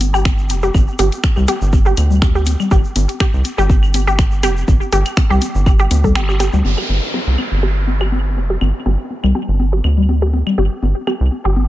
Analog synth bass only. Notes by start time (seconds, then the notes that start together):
Already playing: G1
0.50 F1
0.74 G1
0.99 G1
1.37 C2
1.61 G1
1.97 D2
2.71 G1
2.96 G1
3.34 C2
3.58 G1
4.43 F1
4.68 G1
4.92 G1
5.30 C2
5.55 G1
5.91 D2
6.15 G1
6.53 D2
6.65 G1
6.89 G1
7.27 C2
7.52 G1
8.37 F1
8.61 G1
8.86 G1
9.24 C2
9.48 G1
9.84 D2
10.58 G1
10.83 G1
11.20 C2
11.45 G1